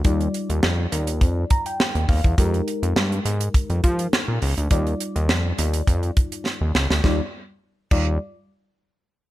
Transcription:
<<
  \new Staff \with { instrumentName = "FM electric piano" } { \time 4/4 \key ees \major \tempo 4 = 103 << { r2 r8 bes''16 g''16 g''8 f''8 | r1 | r1 | r1 | } \\ { <g ees' f' d''>1 | <aes ees' g' bes'>1 | <g ees' f' d''>1 | <g ees' f' d''>8 r4 <g ees' f' d''>8 r2 | } >> }
  \new Staff \with { instrumentName = "Analog synth bass" } { \clef bass \time 4/4 \key ees \major ees,8 r16 ees,16 f,8 ees,8 f,8 r8. ees,16 ees,16 fes,16 | f,8 r16 f,16 g,8 aes,8 r16 f,16 f8 r16 bes,16 des,16 d,16 | ees,8 r16 ees,16 f,8 ees,8 f,8 r8. ees,16 des,16 d,16 | ees,16 r4 r16 ees,8 r2 | }
  \new DrumStaff \with { instrumentName = "Drums" } \drummode { \time 4/4 <hh bd>16 hh16 hh16 hh16 sn8 hh16 hh16 <hh bd>8 <hh bd>16 hh16 sn16 hh16 <hho bd>16 <hh bd>16 | <hh bd>16 hh16 hh16 hh16 sn16 hh16 hh16 hh16 <hh bd>16 hh16 <hh bd>16 hh16 sn8 hho16 hh16 | <hh bd>16 hh16 hh16 hh16 sn8 hh16 hh16 <hh bd>16 hh16 <hh bd>16 hh16 sn8 sn16 sn16 | <bd sn>4 r8 <cymc bd>8 r4 r4 | }
>>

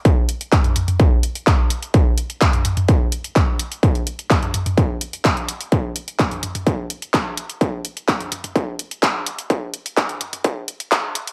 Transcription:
\new DrumStaff \with { instrumentName = "Drums" } \drummode { \time 4/4 \tempo 4 = 127 <hh bd>8 hho16 hh16 <hc hh bd>16 <hh toml>16 <hho toml>16 <hh toml>16 <hh bd>8 hho16 hh16 <hc hh bd>8 hho16 hh16 | <hh bd>8 hho16 hh16 <hc hh bd>16 <hh toml>16 <hho toml>16 <hh toml>16 <hh bd>8 hho16 hh16 <hc hh bd>8 hho16 hh16 | <hh bd>16 hh16 hho16 hh16 <hc hh bd>16 <hh toml>16 <hho toml>16 <hh toml>16 <hh bd>8 hho16 hh16 <hc hh bd>16 hh16 hho16 hh16 | <hh bd>8 hho16 hh16 <hc hh bd>16 <hh toml>16 <hho toml>16 <hh toml>16 <hh bd>8 hho16 hh16 <hc hh bd>8 hho16 hh16 |
<hh bd>8 hho16 hh16 <hc hh bd>16 <hh toml>16 <hho toml>16 <hh toml>16 <hh bd>8 hho16 hh16 <hc hh bd>8 hho16 hh16 | <hh bd>8 hho16 hh16 <hc hh bd>16 <hh toml>16 <hho toml>16 <hh toml>16 <hh bd>8 hho16 hh16 <hc hh bd>8 hho16 hh16 | }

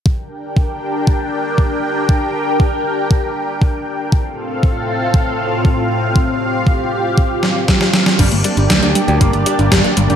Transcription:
<<
  \new Staff \with { instrumentName = "Analog synth pad" } { \time 4/4 \key g \minor \tempo 4 = 118 << { <d' g' g''>1~ | <d' g' g''>1 | <a, c' f' f''>1~ | <a, c' f' f''>1 |
<bes d' d''>1 | } \\ { bes'1~ | bes'1 | a'1 | g'1 |
g'1 | } >> }
  \new Staff \with { instrumentName = "Overdriven electric guitar" } { \time 4/4 \key g \minor r1 | r1 | r1 | r1 |
g16 r16 d'16 r16 g16 d'16 r16 g'16 bes16 r16 d'16 r16 g16 d'16 r16 g'16 | }
  \new Staff \with { instrumentName = "Synth arpeggio sound" } { \time 4/4 \key g \minor r1 | r1 | r1 | r1 |
d'16 bes16 g16 d'16 d'16 bes16 g16 d'16 d'16 bes16 g16 d'16 d'16 bes16 g16 d'16 | }
  \new Staff \with { instrumentName = "Picked electric bass" } { \clef bass \time 4/4 \key g \minor r1 | r1 | r1 | r1 |
g,,16 g,,16 r16 g,,16 d,16 d,16 r16 d,16 g,,16 g,,16 r16 g,,16 r8 g,,16 g,,16 | }
  \new DrumStaff \with { instrumentName = "Drums" } \drummode { \time 4/4 bd4 bd4 bd4 bd4 | bd4 bd4 bd4 bd4 | bd4 bd4 bd4 bd4 | bd4 bd4 bd8 sn8 <bd sn>16 sn16 sn16 sn16 |
<cymc hh bd>16 hh16 hh16 hh16 <hh bd sn>16 hh16 hh16 hh16 <hh bd>16 hh16 hh16 hh16 <hh bd sn>16 hh16 hh16 hh16 | }
>>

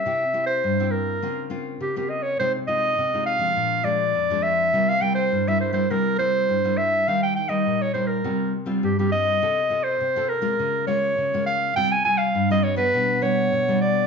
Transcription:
<<
  \new Staff \with { instrumentName = "Clarinet" } { \time 4/4 \key c \phrygian \tempo 4 = 102 e''8. c''8. bes'4 r8 g'16 g'16 ees''16 des''16 | c''8 ees''4 f''4 d''4 e''8~ | e''16 f''16 g''16 c''8 e''16 c''16 c''16 bes'8 c''4 e''8 | f''16 g''16 g''16 ees''8 des''16 c''16 bes'8. r8 g'16 g'16 ees''8~ |
ees''8. c''8. bes'4 des''4 f''8 | g''16 aes''16 aes''16 f''8 ees''16 des''16 b'8. des''4 d''8 | }
  \new Staff \with { instrumentName = "Nylon-string guitar" } { \time 4/4 \key c \phrygian << { <c' e' g'>16 r16 <c' e' g'>8 r16 <c' e' g'>8. <bes c' f'>8 <bes c' f'>8. <bes c' f'>8. | <aes ees' f'>16 r16 <aes ees' f'>8 r16 <aes ees' f'>8 <f aes d'>8. <f aes d'>8 r16 <f aes d'>8. | <g bes e'>16 r16 <g bes e'>8. <g bes e'>8 <g bes e'>16 <g bes e'>8 <g bes e'>8. <g bes e'>8. | <g bes ees'>8 r16 <g bes ees'>8. <g bes ees'>8 <g c' f'>8 r16 <g c' f'>8 <g c' f'>8. |
<c' f' a'>16 r16 <c' f' a'>8 r16 <c' f' a'>8 <aes bes f'>8. <aes bes f'>8. <aes bes f'>8. | <g c' f'>16 r16 <g c' f'>8 r16 <g c' f'>8 <g b d'>8. <g b d'>8. <g b d'>8. | } \\ { c4 g,4 des4 des4 | c4 c4 bes,4 f,4 | c4 g,4 c4 g,4 | ees4 bes,4 c4 g,4 |
c4 c4 des4 des4 | c4 g,4 b,4 b,4 | } >> }
>>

